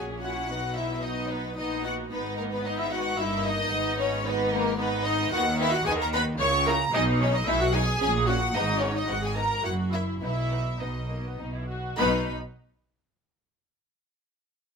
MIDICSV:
0, 0, Header, 1, 6, 480
1, 0, Start_track
1, 0, Key_signature, 5, "major"
1, 0, Tempo, 537153
1, 447, Time_signature, 3, 2, 24, 8
1, 8123, Tempo, 576369
1, 12842, End_track
2, 0, Start_track
2, 0, Title_t, "Violin section"
2, 0, Program_c, 0, 48
2, 200, Note_on_c, 0, 78, 104
2, 676, Note_off_c, 0, 78, 0
2, 679, Note_on_c, 0, 76, 96
2, 922, Note_on_c, 0, 75, 96
2, 926, Note_off_c, 0, 76, 0
2, 1158, Note_on_c, 0, 71, 100
2, 1167, Note_off_c, 0, 75, 0
2, 1405, Note_off_c, 0, 71, 0
2, 1406, Note_on_c, 0, 75, 93
2, 1645, Note_off_c, 0, 75, 0
2, 1651, Note_on_c, 0, 78, 106
2, 1722, Note_off_c, 0, 78, 0
2, 1898, Note_on_c, 0, 71, 100
2, 2119, Note_on_c, 0, 70, 102
2, 2131, Note_off_c, 0, 71, 0
2, 2169, Note_off_c, 0, 70, 0
2, 2244, Note_on_c, 0, 71, 94
2, 2366, Note_off_c, 0, 71, 0
2, 2369, Note_on_c, 0, 75, 104
2, 2491, Note_off_c, 0, 75, 0
2, 2499, Note_on_c, 0, 76, 102
2, 2606, Note_on_c, 0, 78, 115
2, 2613, Note_off_c, 0, 76, 0
2, 2840, Note_on_c, 0, 76, 111
2, 2848, Note_off_c, 0, 78, 0
2, 3077, Note_on_c, 0, 75, 127
2, 3083, Note_off_c, 0, 76, 0
2, 3560, Note_off_c, 0, 75, 0
2, 3572, Note_on_c, 0, 73, 120
2, 3802, Note_on_c, 0, 71, 113
2, 3804, Note_off_c, 0, 73, 0
2, 4043, Note_off_c, 0, 71, 0
2, 4048, Note_on_c, 0, 70, 124
2, 4276, Note_on_c, 0, 71, 113
2, 4284, Note_off_c, 0, 70, 0
2, 4512, Note_off_c, 0, 71, 0
2, 4514, Note_on_c, 0, 75, 127
2, 4754, Note_on_c, 0, 78, 123
2, 4755, Note_off_c, 0, 75, 0
2, 4992, Note_off_c, 0, 78, 0
2, 4998, Note_on_c, 0, 76, 127
2, 5116, Note_off_c, 0, 76, 0
2, 5116, Note_on_c, 0, 78, 127
2, 5238, Note_off_c, 0, 78, 0
2, 5241, Note_on_c, 0, 80, 127
2, 5289, Note_off_c, 0, 80, 0
2, 5380, Note_on_c, 0, 82, 127
2, 5424, Note_off_c, 0, 82, 0
2, 5490, Note_on_c, 0, 83, 127
2, 5561, Note_off_c, 0, 83, 0
2, 5729, Note_on_c, 0, 85, 122
2, 5960, Note_off_c, 0, 85, 0
2, 5970, Note_on_c, 0, 82, 127
2, 6205, Note_off_c, 0, 82, 0
2, 6209, Note_on_c, 0, 75, 127
2, 6280, Note_off_c, 0, 75, 0
2, 6460, Note_on_c, 0, 73, 127
2, 6568, Note_off_c, 0, 73, 0
2, 6582, Note_on_c, 0, 75, 119
2, 6684, Note_on_c, 0, 76, 127
2, 6690, Note_off_c, 0, 75, 0
2, 6801, Note_off_c, 0, 76, 0
2, 6817, Note_on_c, 0, 78, 118
2, 6920, Note_on_c, 0, 80, 127
2, 6927, Note_off_c, 0, 78, 0
2, 7158, Note_off_c, 0, 80, 0
2, 7172, Note_on_c, 0, 80, 119
2, 7243, Note_off_c, 0, 80, 0
2, 7400, Note_on_c, 0, 78, 124
2, 7635, Note_off_c, 0, 78, 0
2, 7640, Note_on_c, 0, 75, 127
2, 7882, Note_off_c, 0, 75, 0
2, 7883, Note_on_c, 0, 73, 115
2, 8004, Note_off_c, 0, 73, 0
2, 8015, Note_on_c, 0, 75, 109
2, 8118, Note_on_c, 0, 78, 115
2, 8131, Note_off_c, 0, 75, 0
2, 8237, Note_off_c, 0, 78, 0
2, 8256, Note_on_c, 0, 80, 97
2, 8355, Note_on_c, 0, 82, 114
2, 8363, Note_off_c, 0, 80, 0
2, 8589, Note_off_c, 0, 82, 0
2, 8589, Note_on_c, 0, 78, 99
2, 8656, Note_off_c, 0, 78, 0
2, 8825, Note_on_c, 0, 76, 98
2, 8891, Note_off_c, 0, 76, 0
2, 9062, Note_on_c, 0, 76, 88
2, 9542, Note_off_c, 0, 76, 0
2, 9555, Note_on_c, 0, 75, 73
2, 10042, Note_off_c, 0, 75, 0
2, 10536, Note_on_c, 0, 83, 103
2, 10800, Note_off_c, 0, 83, 0
2, 12842, End_track
3, 0, Start_track
3, 0, Title_t, "Viola section"
3, 0, Program_c, 1, 48
3, 0, Note_on_c, 1, 68, 86
3, 195, Note_on_c, 1, 66, 87
3, 202, Note_off_c, 1, 68, 0
3, 674, Note_off_c, 1, 66, 0
3, 681, Note_on_c, 1, 64, 86
3, 920, Note_on_c, 1, 63, 82
3, 926, Note_off_c, 1, 64, 0
3, 1158, Note_on_c, 1, 59, 82
3, 1166, Note_off_c, 1, 63, 0
3, 1404, Note_on_c, 1, 63, 100
3, 1405, Note_off_c, 1, 59, 0
3, 1644, Note_off_c, 1, 63, 0
3, 1647, Note_on_c, 1, 66, 88
3, 1890, Note_off_c, 1, 66, 0
3, 1893, Note_on_c, 1, 59, 83
3, 1964, Note_off_c, 1, 59, 0
3, 2135, Note_on_c, 1, 58, 81
3, 2251, Note_off_c, 1, 58, 0
3, 2260, Note_on_c, 1, 59, 84
3, 2373, Note_on_c, 1, 63, 94
3, 2374, Note_off_c, 1, 59, 0
3, 2491, Note_on_c, 1, 64, 92
3, 2493, Note_off_c, 1, 63, 0
3, 2540, Note_off_c, 1, 64, 0
3, 2613, Note_on_c, 1, 66, 103
3, 2847, Note_off_c, 1, 66, 0
3, 2855, Note_on_c, 1, 64, 102
3, 3091, Note_off_c, 1, 64, 0
3, 3094, Note_on_c, 1, 63, 98
3, 3569, Note_off_c, 1, 63, 0
3, 3570, Note_on_c, 1, 61, 97
3, 3808, Note_off_c, 1, 61, 0
3, 3811, Note_on_c, 1, 59, 105
3, 4043, Note_on_c, 1, 58, 105
3, 4047, Note_off_c, 1, 59, 0
3, 4275, Note_on_c, 1, 59, 114
3, 4277, Note_off_c, 1, 58, 0
3, 4346, Note_off_c, 1, 59, 0
3, 4518, Note_on_c, 1, 63, 105
3, 4748, Note_on_c, 1, 66, 127
3, 4753, Note_off_c, 1, 63, 0
3, 4820, Note_off_c, 1, 66, 0
3, 4995, Note_on_c, 1, 64, 123
3, 5110, Note_on_c, 1, 66, 121
3, 5115, Note_off_c, 1, 64, 0
3, 5228, Note_on_c, 1, 68, 122
3, 5235, Note_off_c, 1, 66, 0
3, 5352, Note_on_c, 1, 70, 110
3, 5354, Note_off_c, 1, 68, 0
3, 5477, Note_off_c, 1, 70, 0
3, 5479, Note_on_c, 1, 71, 127
3, 5550, Note_off_c, 1, 71, 0
3, 5716, Note_on_c, 1, 73, 127
3, 5953, Note_off_c, 1, 73, 0
3, 5959, Note_on_c, 1, 70, 117
3, 6030, Note_off_c, 1, 70, 0
3, 6191, Note_on_c, 1, 63, 121
3, 6431, Note_off_c, 1, 63, 0
3, 6440, Note_on_c, 1, 61, 117
3, 6547, Note_on_c, 1, 63, 112
3, 6560, Note_off_c, 1, 61, 0
3, 6665, Note_on_c, 1, 64, 124
3, 6673, Note_off_c, 1, 63, 0
3, 6789, Note_off_c, 1, 64, 0
3, 6790, Note_on_c, 1, 66, 113
3, 6907, Note_on_c, 1, 68, 124
3, 6914, Note_off_c, 1, 66, 0
3, 7127, Note_off_c, 1, 68, 0
3, 7138, Note_on_c, 1, 68, 127
3, 7380, Note_on_c, 1, 66, 108
3, 7383, Note_off_c, 1, 68, 0
3, 7625, Note_on_c, 1, 63, 115
3, 7630, Note_off_c, 1, 66, 0
3, 7868, Note_on_c, 1, 61, 109
3, 7870, Note_off_c, 1, 63, 0
3, 7985, Note_on_c, 1, 63, 103
3, 7997, Note_off_c, 1, 61, 0
3, 8104, Note_on_c, 1, 66, 115
3, 8116, Note_off_c, 1, 63, 0
3, 8223, Note_on_c, 1, 68, 84
3, 8230, Note_off_c, 1, 66, 0
3, 8342, Note_on_c, 1, 70, 101
3, 8345, Note_off_c, 1, 68, 0
3, 8571, Note_on_c, 1, 66, 95
3, 8582, Note_off_c, 1, 70, 0
3, 8814, Note_on_c, 1, 64, 85
3, 8818, Note_off_c, 1, 66, 0
3, 9050, Note_off_c, 1, 64, 0
3, 9060, Note_on_c, 1, 64, 98
3, 9541, Note_off_c, 1, 64, 0
3, 9548, Note_on_c, 1, 63, 73
3, 10039, Note_off_c, 1, 63, 0
3, 10528, Note_on_c, 1, 59, 102
3, 10796, Note_off_c, 1, 59, 0
3, 12842, End_track
4, 0, Start_track
4, 0, Title_t, "Violin section"
4, 0, Program_c, 2, 48
4, 0, Note_on_c, 2, 61, 73
4, 208, Note_on_c, 2, 64, 70
4, 444, Note_off_c, 2, 64, 0
4, 445, Note_off_c, 2, 61, 0
4, 453, Note_on_c, 2, 59, 71
4, 454, Note_on_c, 2, 63, 71
4, 929, Note_off_c, 2, 59, 0
4, 929, Note_off_c, 2, 63, 0
4, 939, Note_on_c, 2, 59, 76
4, 940, Note_on_c, 2, 63, 80
4, 1401, Note_off_c, 2, 63, 0
4, 1404, Note_off_c, 2, 59, 0
4, 1412, Note_on_c, 2, 63, 76
4, 1415, Note_on_c, 2, 59, 76
4, 1881, Note_off_c, 2, 63, 0
4, 1883, Note_off_c, 2, 59, 0
4, 1891, Note_on_c, 2, 63, 80
4, 1894, Note_on_c, 2, 59, 82
4, 2353, Note_off_c, 2, 59, 0
4, 2354, Note_off_c, 2, 63, 0
4, 2364, Note_on_c, 2, 59, 91
4, 2364, Note_on_c, 2, 63, 85
4, 2837, Note_off_c, 2, 59, 0
4, 2838, Note_off_c, 2, 63, 0
4, 2849, Note_on_c, 2, 63, 82
4, 2851, Note_on_c, 2, 58, 77
4, 3311, Note_off_c, 2, 63, 0
4, 3322, Note_on_c, 2, 59, 84
4, 3322, Note_on_c, 2, 63, 96
4, 3327, Note_off_c, 2, 58, 0
4, 3793, Note_off_c, 2, 63, 0
4, 3795, Note_off_c, 2, 59, 0
4, 3805, Note_on_c, 2, 59, 102
4, 3808, Note_on_c, 2, 63, 93
4, 4273, Note_off_c, 2, 59, 0
4, 4274, Note_off_c, 2, 63, 0
4, 4284, Note_on_c, 2, 63, 98
4, 4289, Note_on_c, 2, 59, 99
4, 4750, Note_off_c, 2, 63, 0
4, 4752, Note_off_c, 2, 59, 0
4, 4771, Note_on_c, 2, 63, 93
4, 4772, Note_on_c, 2, 59, 100
4, 4843, Note_off_c, 2, 59, 0
4, 4843, Note_off_c, 2, 63, 0
4, 5005, Note_on_c, 2, 59, 94
4, 5007, Note_on_c, 2, 63, 86
4, 5076, Note_off_c, 2, 59, 0
4, 5078, Note_off_c, 2, 63, 0
4, 5246, Note_on_c, 2, 59, 100
4, 5247, Note_on_c, 2, 63, 91
4, 5317, Note_off_c, 2, 59, 0
4, 5318, Note_off_c, 2, 63, 0
4, 5487, Note_on_c, 2, 59, 91
4, 5488, Note_on_c, 2, 63, 89
4, 5558, Note_off_c, 2, 59, 0
4, 5559, Note_off_c, 2, 63, 0
4, 5725, Note_on_c, 2, 64, 86
4, 5728, Note_on_c, 2, 58, 84
4, 5796, Note_off_c, 2, 64, 0
4, 5799, Note_off_c, 2, 58, 0
4, 5959, Note_on_c, 2, 58, 91
4, 5960, Note_on_c, 2, 64, 90
4, 6031, Note_off_c, 2, 58, 0
4, 6032, Note_off_c, 2, 64, 0
4, 6196, Note_on_c, 2, 56, 101
4, 6196, Note_on_c, 2, 63, 104
4, 6267, Note_off_c, 2, 56, 0
4, 6267, Note_off_c, 2, 63, 0
4, 6444, Note_on_c, 2, 56, 90
4, 6447, Note_on_c, 2, 63, 91
4, 6516, Note_off_c, 2, 56, 0
4, 6518, Note_off_c, 2, 63, 0
4, 6673, Note_on_c, 2, 63, 98
4, 6674, Note_on_c, 2, 56, 90
4, 6744, Note_off_c, 2, 63, 0
4, 6745, Note_off_c, 2, 56, 0
4, 6916, Note_on_c, 2, 63, 94
4, 6918, Note_on_c, 2, 56, 95
4, 6988, Note_off_c, 2, 63, 0
4, 6989, Note_off_c, 2, 56, 0
4, 7157, Note_on_c, 2, 61, 86
4, 7159, Note_off_c, 2, 61, 0
4, 7159, Note_on_c, 2, 61, 85
4, 7231, Note_off_c, 2, 61, 0
4, 7399, Note_on_c, 2, 61, 83
4, 7401, Note_off_c, 2, 61, 0
4, 7401, Note_on_c, 2, 61, 84
4, 7473, Note_off_c, 2, 61, 0
4, 7642, Note_on_c, 2, 59, 97
4, 7643, Note_on_c, 2, 63, 92
4, 7713, Note_off_c, 2, 59, 0
4, 7714, Note_off_c, 2, 63, 0
4, 7871, Note_on_c, 2, 59, 86
4, 7872, Note_on_c, 2, 63, 80
4, 7942, Note_off_c, 2, 59, 0
4, 7943, Note_off_c, 2, 63, 0
4, 8116, Note_on_c, 2, 59, 82
4, 8117, Note_on_c, 2, 63, 86
4, 8183, Note_off_c, 2, 59, 0
4, 8184, Note_off_c, 2, 63, 0
4, 8348, Note_on_c, 2, 59, 75
4, 8349, Note_on_c, 2, 63, 75
4, 8415, Note_off_c, 2, 59, 0
4, 8416, Note_off_c, 2, 63, 0
4, 8570, Note_on_c, 2, 58, 66
4, 8574, Note_on_c, 2, 64, 68
4, 8636, Note_off_c, 2, 58, 0
4, 8641, Note_off_c, 2, 64, 0
4, 8816, Note_on_c, 2, 64, 67
4, 8818, Note_on_c, 2, 58, 67
4, 8882, Note_off_c, 2, 64, 0
4, 8884, Note_off_c, 2, 58, 0
4, 9060, Note_on_c, 2, 59, 75
4, 9063, Note_on_c, 2, 63, 68
4, 9126, Note_off_c, 2, 59, 0
4, 9129, Note_off_c, 2, 63, 0
4, 9302, Note_on_c, 2, 59, 64
4, 9302, Note_on_c, 2, 63, 63
4, 9369, Note_off_c, 2, 59, 0
4, 9369, Note_off_c, 2, 63, 0
4, 9545, Note_on_c, 2, 59, 80
4, 9612, Note_off_c, 2, 59, 0
4, 9787, Note_on_c, 2, 58, 71
4, 9912, Note_off_c, 2, 58, 0
4, 9927, Note_on_c, 2, 59, 69
4, 10042, Note_on_c, 2, 63, 76
4, 10045, Note_off_c, 2, 59, 0
4, 10164, Note_off_c, 2, 63, 0
4, 10168, Note_on_c, 2, 64, 76
4, 10281, Note_on_c, 2, 66, 76
4, 10289, Note_off_c, 2, 64, 0
4, 10522, Note_off_c, 2, 66, 0
4, 10530, Note_on_c, 2, 63, 105
4, 10534, Note_on_c, 2, 71, 103
4, 10797, Note_off_c, 2, 63, 0
4, 10799, Note_off_c, 2, 71, 0
4, 12842, End_track
5, 0, Start_track
5, 0, Title_t, "Cello section"
5, 0, Program_c, 3, 48
5, 0, Note_on_c, 3, 46, 74
5, 448, Note_off_c, 3, 46, 0
5, 451, Note_on_c, 3, 47, 82
5, 1414, Note_off_c, 3, 47, 0
5, 1416, Note_on_c, 3, 46, 76
5, 1895, Note_off_c, 3, 46, 0
5, 1896, Note_on_c, 3, 44, 86
5, 2834, Note_off_c, 3, 44, 0
5, 2850, Note_on_c, 3, 43, 92
5, 3317, Note_off_c, 3, 43, 0
5, 3324, Note_on_c, 3, 44, 105
5, 4728, Note_off_c, 3, 44, 0
5, 4756, Note_on_c, 3, 51, 126
5, 5181, Note_off_c, 3, 51, 0
5, 5234, Note_on_c, 3, 51, 111
5, 5661, Note_off_c, 3, 51, 0
5, 5716, Note_on_c, 3, 49, 115
5, 6142, Note_off_c, 3, 49, 0
5, 6194, Note_on_c, 3, 47, 120
5, 6620, Note_off_c, 3, 47, 0
5, 6670, Note_on_c, 3, 47, 106
5, 7096, Note_off_c, 3, 47, 0
5, 7154, Note_on_c, 3, 46, 115
5, 7580, Note_off_c, 3, 46, 0
5, 7639, Note_on_c, 3, 44, 123
5, 8068, Note_off_c, 3, 44, 0
5, 8124, Note_on_c, 3, 44, 98
5, 8533, Note_off_c, 3, 44, 0
5, 8586, Note_on_c, 3, 42, 95
5, 9010, Note_off_c, 3, 42, 0
5, 9072, Note_on_c, 3, 47, 84
5, 9499, Note_off_c, 3, 47, 0
5, 9555, Note_on_c, 3, 47, 78
5, 9985, Note_off_c, 3, 47, 0
5, 10045, Note_on_c, 3, 47, 75
5, 10475, Note_off_c, 3, 47, 0
5, 10532, Note_on_c, 3, 47, 115
5, 10798, Note_off_c, 3, 47, 0
5, 12842, End_track
6, 0, Start_track
6, 0, Title_t, "Double bass section"
6, 0, Program_c, 4, 48
6, 0, Note_on_c, 4, 34, 81
6, 450, Note_off_c, 4, 34, 0
6, 451, Note_on_c, 4, 35, 73
6, 1409, Note_on_c, 4, 34, 78
6, 1414, Note_off_c, 4, 35, 0
6, 1892, Note_off_c, 4, 34, 0
6, 1893, Note_on_c, 4, 32, 78
6, 2832, Note_off_c, 4, 32, 0
6, 2856, Note_on_c, 4, 31, 93
6, 3320, Note_off_c, 4, 31, 0
6, 3331, Note_on_c, 4, 32, 96
6, 4732, Note_off_c, 4, 32, 0
6, 4760, Note_on_c, 4, 39, 111
6, 5184, Note_off_c, 4, 39, 0
6, 5238, Note_on_c, 4, 39, 116
6, 5664, Note_off_c, 4, 39, 0
6, 5720, Note_on_c, 4, 37, 118
6, 6143, Note_off_c, 4, 37, 0
6, 6200, Note_on_c, 4, 35, 120
6, 6623, Note_off_c, 4, 35, 0
6, 6681, Note_on_c, 4, 35, 109
6, 7102, Note_off_c, 4, 35, 0
6, 7163, Note_on_c, 4, 34, 117
6, 7585, Note_off_c, 4, 34, 0
6, 7639, Note_on_c, 4, 32, 111
6, 8068, Note_off_c, 4, 32, 0
6, 8122, Note_on_c, 4, 32, 91
6, 8532, Note_off_c, 4, 32, 0
6, 8591, Note_on_c, 4, 30, 90
6, 9012, Note_off_c, 4, 30, 0
6, 9069, Note_on_c, 4, 35, 76
6, 9498, Note_off_c, 4, 35, 0
6, 9553, Note_on_c, 4, 35, 76
6, 9984, Note_off_c, 4, 35, 0
6, 10043, Note_on_c, 4, 35, 71
6, 10474, Note_off_c, 4, 35, 0
6, 10532, Note_on_c, 4, 35, 101
6, 10798, Note_off_c, 4, 35, 0
6, 12842, End_track
0, 0, End_of_file